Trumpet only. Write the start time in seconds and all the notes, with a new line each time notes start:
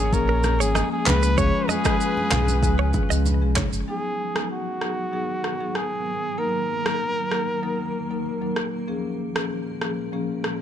Already playing: G#4
0.14 A#4
0.61 G#4
0.92 G#4
1.07 B4
1.39 C#5
1.70 G#4
3.89 G#4
4.51 F#4
5.76 G#4
6.39 A#4